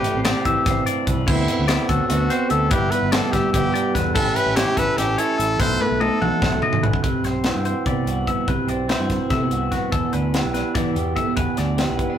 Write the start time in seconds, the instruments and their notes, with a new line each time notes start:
Already playing: clean electric guitar A2 D4 B4, trumpet G4
0.04 clean electric guitar A3, closed hi-hat
0.15 fingered electric bass A1, clean electric guitar C4
0.23 clean electric guitar D4 D5, trumpet G4, snare, closed hi-hat
0.45 fingered electric bass A1, clean electric guitar E3 E5, kick, closed hi-hat
0.66 fingered electric bass A1, clean electric guitar C4, kick, snare, closed hi-hat
0.86 clean electric guitar D4 D5, closed hi-hat
1.07 fingered electric bass C2, clean electric guitar E3 B4, kick, closed hi-hat
1.26 fingered electric bass D2, clean electric guitar D3 B3 C4 C5, trumpet E4, kick, crash
1.48 clean electric guitar B3, closed hi-hat
1.59 fingered electric bass D2
1.68 clean electric guitar C4 D5, trumpet E4, snare, closed hi-hat
1.88 fingered electric bass D2, clean electric guitar F#3 A4, trumpet F#4, kick, closed hi-hat
2.08 fingered electric bass D2, clean electric guitar B3, trumpet F#4, closed hi-hat
2.30 clean electric guitar C4 C5, closed hi-hat
2.50 fingered electric bass D2, clean electric guitar D3 E5, trumpet A4, closed hi-hat
2.70 fingered electric bass G1, clean electric guitar G2 B3 D4 E4 B4, trumpet G4, kick, closed hi-hat
2.91 clean electric guitar B3, trumpet B4, closed hi-hat
3.02 fingered electric bass G1
3.12 clean electric guitar D4 D5, trumpet A4, snare, closed hi-hat
3.32 fingered electric bass G1, clean electric guitar G3 E5, trumpet G4, kick, snare, closed hi-hat
3.53 fingered electric bass G1, clean electric guitar B3, trumpet G4, kick, closed hi-hat
3.74 clean electric guitar D4 D5, closed hi-hat
3.95 fingered electric bass E2, clean electric guitar D3 B4, kick, snare, closed hi-hat
4.14 fingered electric bass A1, clean electric guitar A2 C#4 E4 G4 B4, trumpet A4, kick, crash
4.36 clean electric guitar C#4, trumpet B4, closed hi-hat
4.46 fingered electric bass A1
4.56 clean electric guitar E4 C#5, trumpet G4, snare, closed hi-hat
4.76 fingered electric bass A1, clean electric guitar E3 A4, trumpet B4, kick, snare, closed hi-hat
4.97 fingered electric bass A1, clean electric guitar C#4, trumpet G4, snare, closed hi-hat
5.18 clean electric guitar E4 C#5, trumpet A4, closed hi-hat
5.38 fingered electric bass A1, clean electric guitar E3 E5, closed hi-hat
5.59 fingered electric bass B1, clean electric guitar B2 A3 D#4 A4 B4, trumpet C5, kick, closed hi-hat
5.81 clean electric guitar A3, trumpet B4, high tom
5.91 fingered electric bass B1
6.00 clean electric guitar D#4 D#5, trumpet A4, high tom
6.22 fingered electric bass B1, clean electric guitar F#3 F#5, mid tom
6.42 fingered electric bass B1, clean electric guitar A3, kick, snare
6.52 mid tom
6.62 clean electric guitar D#4 D#5, mid tom
6.73 floor tom
6.83 fingered electric bass B1, clean electric guitar F#2 B4, floor tom
6.93 kick
7.04 fingered electric bass C2, clean electric guitar C3 B4, kick, closed hi-hat
7.23 fingered electric bass B1, clean electric guitar C4 C5, snare, closed hi-hat
7.44 clean electric guitar E3 F#4, snare, closed hi-hat
7.55 fingered electric bass G2
7.65 clean electric guitar C4 C5, closed hi-hat
7.86 fingered electric bass C3, clean electric guitar B3 D5, kick, closed hi-hat
8.06 fingered electric bass C2, clean electric guitar G2 F#4, closed hi-hat
8.27 clean electric guitar B3 E5, kick, closed hi-hat
8.47 fingered electric bass C2, clean electric guitar C3 B4, kick, closed hi-hat
8.67 fingered electric bass B1, clean electric guitar C4 D5, closed hi-hat
8.88 clean electric guitar E3 E4 C5, snare, closed hi-hat
8.99 fingered electric bass G2, clean electric guitar F#4
9.10 clean electric guitar C4, kick, snare, closed hi-hat
9.30 fingered electric bass C3, clean electric guitar A3 E5, kick, snare, closed hi-hat
9.40 clean electric guitar B3
9.51 fingered electric bass C2, clean electric guitar G2 F#4, closed hi-hat
9.72 clean electric guitar B3 F#4, kick, snare, closed hi-hat
9.92 clean electric guitar E2 A4, fingered electric bass E2, kick, closed hi-hat
10.13 fingered electric bass D2, clean electric guitar D4 B4, closed hi-hat
10.34 clean electric guitar E3 G4, snare, closed hi-hat
10.44 fingered electric bass B1
10.54 clean electric guitar D4 B4, snare, closed hi-hat
10.75 fingered electric bass E3, clean electric guitar B3 D5, kick, snare, closed hi-hat
10.94 fingered electric bass E2, clean electric guitar B2 G4, closed hi-hat
11.15 clean electric guitar A3 E5, kick, closed hi-hat
11.26 clean electric guitar B3
11.36 clean electric guitar E2 B4, fingered electric bass E2, kick, closed hi-hat
11.57 fingered electric bass D2, clean electric guitar D4 D5, snare, closed hi-hat
11.77 clean electric guitar E3 G4 B4, snare, closed hi-hat
11.89 fingered electric bass B1
11.98 clean electric guitar B3, kick, closed hi-hat
12.10 clean electric guitar D4